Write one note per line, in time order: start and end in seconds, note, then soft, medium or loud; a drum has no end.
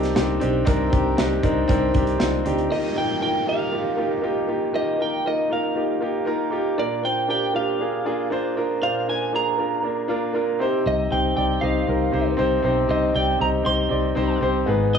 0.00 0.12 C2 medium
0.00 0.66 C3 medium
0.00 0.15 C4 loud
0.00 0.16 D4 medium
0.00 0.17 D#4 loud
0.00 2.20 F4 medium
0.00 0.17 G4 loud
0.00 0.67 A#4 loud
0.00 snare soft
0.00 closed hi-hat soft
0.15 0.38 C2 medium
0.15 0.38 C4 medium
0.15 0.39 D4 medium
0.15 0.40 D#4 medium
0.15 0.40 G4 medium
0.15 snare medium
0.15 closed hi-hat medium
0.40 0.63 B1 medium
0.40 0.64 C4 medium
0.40 0.64 D4 medium
0.40 0.65 D#4 medium
0.40 0.65 G4 medium
0.40 closed hi-hat medium
0.65 0.88 C2 loud
0.65 1.39 C3 medium
0.65 0.89 C4 loud
0.65 0.89 D4 medium
0.65 0.90 D#4 medium
0.65 0.90 A#4 loud
0.65 kick loud
0.65 closed hi-hat medium
0.90 1.14 C2 loud
0.90 1.15 C4 medium
0.90 1.15 D4 medium
0.90 1.15 D#4 medium
0.90 1.16 G4 medium
0.90 kick medium
0.90 closed hi-hat medium
1.17 1.39 C2 medium
1.17 1.41 C4 medium
1.17 1.41 D4 medium
1.17 1.42 D#4 medium
1.17 1.42 G4 medium
1.17 snare loud
1.17 closed hi-hat medium
1.43 1.64 C2 medium
1.43 1.66 C4 medium
1.43 1.67 D4 medium
1.43 1.67 D#4 medium
1.43 1.67 A#4 loud
1.43 kick medium
1.43 closed hi-hat medium
1.68 1.90 C2 medium
1.68 1.92 C4 loud
1.68 1.92 D4 medium
1.68 1.92 D#4 medium
1.68 1.93 A#4 loud
1.68 kick medium
1.68 closed hi-hat medium
1.94 2.16 C2 medium
1.94 2.17 C4 medium
1.94 2.17 D4 medium
1.94 2.18 D#4 medium
1.94 2.18 G4 medium
1.94 kick medium
1.94 closed hi-hat medium
2.07 closed hi-hat soft
2.18 2.41 C2 medium
2.18 2.42 C4 medium
2.18 2.43 D4 medium
2.18 2.43 D#4 medium
2.18 2.43 F4 medium
2.18 snare medium
2.18 closed hi-hat medium
2.45 2.67 D2 medium
2.45 2.68 C4 medium
2.45 2.69 D4 medium
2.45 2.69 D#4 medium
2.45 2.69 G4 medium
2.45 closed hi-hat medium
2.58 closed hi-hat soft
2.70 3.44 D#3 soft
2.70 2.94 A#3 medium
2.70 2.94 D#4 medium
2.70 2.94 F4 medium
2.70 2.95 G4 medium
2.70 2.98 D#5 medium
2.70 downlifter medium
2.95 3.19 A#3 medium
2.95 3.19 D#4 soft
2.95 3.20 F4 soft
2.95 3.20 A#4 medium
2.95 3.21 G5 medium
3.21 3.45 A#3 medium
3.21 3.45 D#4 soft
3.21 3.45 F4 soft
3.21 3.46 A#4 medium
3.21 3.48 G5 medium
3.46 3.70 A#3 medium
3.46 3.70 D#4 medium
3.46 3.70 F4 medium
3.46 3.71 G4 medium
3.46 4.21 F5 medium
3.72 3.95 A#3 medium
3.72 3.95 D#4 medium
3.72 3.96 F4 medium
3.72 3.96 G4 medium
3.96 4.20 A#3 medium
3.96 4.21 D#4 medium
3.96 4.21 F4 medium
3.96 4.21 G4 medium
4.22 4.46 A#3 medium
4.22 4.46 D#4 medium
4.22 4.47 F4 medium
4.22 4.47 G4 medium
4.47 4.71 A#3 medium
4.47 4.72 D#4 medium
4.47 4.72 F4 medium
4.47 4.72 G4 medium
4.73 5.47 D#3 soft
4.73 4.97 A#3 medium
4.73 4.97 D#4 medium
4.73 4.98 F4 medium
4.73 4.98 G4 medium
4.73 5.01 D#5 medium
4.98 5.22 A#3 soft
4.98 5.23 D#4 medium
4.98 5.23 F4 soft
4.98 5.23 A#4 medium
4.98 5.27 G5 medium
5.25 5.48 A#3 medium
5.25 5.49 D#4 medium
5.25 5.49 F4 medium
5.25 5.49 A#4 medium
5.25 5.50 D#5 medium
5.50 5.74 A#3 medium
5.50 5.74 D#4 medium
5.50 5.74 F4 medium
5.50 5.74 A#4 medium
5.50 6.24 F5 medium
5.75 5.99 A#3 medium
5.75 5.99 D#4 medium
5.75 5.99 F4 medium
5.75 6.00 G4 medium
6.00 6.24 A#3 medium
6.00 6.25 D#4 medium
6.00 6.25 F4 medium
6.00 6.25 G4 medium
6.25 6.49 A#3 medium
6.25 6.50 D#4 medium
6.25 6.50 F4 medium
6.25 6.51 A#4 loud
6.51 6.75 A#3 medium
6.51 6.75 D#4 medium
6.51 6.76 F4 medium
6.51 6.76 G4 medium
6.77 7.50 A#2 medium
6.77 7.01 A#3 medium
6.77 7.01 D4 medium
6.77 7.01 F4 medium
6.77 7.02 A#4 medium
6.77 7.05 D5 medium
7.03 7.26 A#3 medium
7.03 7.27 D4 soft
7.03 7.27 F4 soft
7.03 7.27 C5 medium
7.03 7.29 G5 medium
7.28 7.52 A#3 medium
7.28 7.52 D4 medium
7.28 7.52 F4 soft
7.28 7.53 G4 medium
7.28 7.56 G5 medium
7.53 7.77 A#3 medium
7.53 7.77 D4 medium
7.53 7.78 F4 medium
7.53 7.78 G4 medium
7.53 8.28 F5 medium
7.79 8.03 A#3 medium
7.79 8.03 D4 medium
7.79 8.04 F4 soft
7.79 8.04 G#4 medium
8.05 8.28 A#3 medium
8.05 8.29 D4 medium
8.05 8.29 F4 medium
8.05 8.29 G#4 medium
8.30 8.54 A#3 medium
8.30 8.54 D4 medium
8.30 8.55 F4 medium
8.30 8.55 C5 medium
8.56 8.79 A#3 medium
8.56 8.80 D4 medium
8.56 8.80 F4 medium
8.56 8.80 A#4 medium
8.82 9.55 A#2 medium
8.82 9.05 A#3 medium
8.82 9.05 D4 medium
8.82 9.05 F4 medium
8.82 9.06 C5 medium
8.82 9.09 F5 medium
9.07 9.31 A#3 medium
9.07 9.31 D4 soft
9.07 9.31 F4 medium
9.07 9.32 A#4 medium
9.07 9.35 G#5 medium
9.32 9.56 A#3 medium
9.32 9.56 D4 medium
9.32 9.57 F4 medium
9.32 9.57 G#4 medium
9.32 10.58 A#5 medium
9.58 9.81 A#3 medium
9.58 9.81 D4 medium
9.58 9.82 F4 medium
9.58 9.82 A#4 medium
9.82 10.06 A#3 medium
9.82 10.07 D4 medium
9.82 10.07 F4 soft
9.82 10.08 A#4 medium
10.08 10.32 A#3 medium
10.08 10.32 D4 medium
10.08 10.32 F4 medium
10.08 10.33 A#4 medium
10.33 10.57 A#3 medium
10.33 10.57 D4 medium
10.33 10.58 F4 medium
10.33 10.58 A#4 medium
10.59 11.33 C3 medium
10.59 11.06 C4 medium
10.59 11.06 D#4 medium
10.59 11.07 G4 medium
10.59 11.07 C5 medium
10.86 11.07 C2 medium
10.86 11.13 D#5 medium
11.11 11.32 C2 medium
11.11 11.34 C4 medium
11.11 11.34 D#4 soft
11.11 11.35 G4 soft
11.11 11.35 C5 medium
11.11 11.36 G5 medium
11.36 11.58 C2 medium
11.36 11.59 C4 medium
11.36 11.60 D#4 medium
11.36 11.60 G4 medium
11.36 11.60 D5 medium
11.36 11.63 G5 medium
11.61 11.83 C2 medium
11.61 11.85 C4 medium
11.61 11.85 D#4 medium
11.61 11.85 G4 medium
11.61 11.86 D#5 medium
11.61 12.34 F5 medium
11.87 12.09 C2 medium
11.87 12.10 C4 medium
11.87 12.11 D#4 medium
11.87 12.11 G4 medium
11.87 12.11 A#4 medium
12.12 12.34 C2 medium
12.12 12.35 C4 medium
12.12 12.36 D#4 medium
12.12 12.36 G4 medium
12.12 12.36 C5 medium
12.37 12.60 C2 medium
12.37 12.61 C4 medium
12.37 12.61 D#4 medium
12.37 12.62 G4 medium
12.37 12.62 C5 loud
12.63 12.85 B1 medium
12.63 13.36 C3 medium
12.63 12.86 C4 medium
12.63 12.87 D#4 medium
12.63 12.87 G4 medium
12.63 12.88 C5 medium
12.88 13.10 C2 medium
12.88 13.12 C4 medium
12.88 13.12 D#4 medium
12.88 13.12 G4 medium
12.88 13.13 C5 medium
12.88 13.16 D#5 medium
13.14 13.36 C2 medium
13.14 13.37 C4 medium
13.14 13.38 D#4 medium
13.14 13.38 G4 soft
13.14 13.38 D5 medium
13.14 13.41 G5 medium
13.39 13.61 C2 medium
13.39 13.62 C4 medium
13.39 13.63 D#4 medium
13.39 13.63 G4 medium
13.39 13.64 D#5 medium
13.39 13.48 A#5 medium
13.63 13.87 C2 medium
13.63 13.87 C4 medium
13.63 13.88 D#4 medium
13.63 13.89 G4 medium
13.63 13.89 C5 medium
13.63 14.38 C6 medium
13.89 14.12 C2 medium
13.89 14.13 C4 medium
13.89 14.14 D#4 medium
13.89 14.14 G4 medium
13.89 14.14 D5 medium
14.15 14.38 C2 medium
14.15 14.39 C4 medium
14.15 14.39 D#4 medium
14.15 14.40 G4 medium
14.15 14.40 C5 medium
14.41 14.63 C2 medium
14.41 14.65 C4 medium
14.41 14.65 D#4 medium
14.41 14.65 G4 medium
14.41 14.66 C5 medium
14.66 14.98 G#1 medium
14.66 14.98 G#2 medium
14.66 14.98 B3 medium
14.66 14.98 D#4 medium
14.66 14.98 G#4 medium
14.66 14.98 B4 medium
14.95 14.98 D#5 medium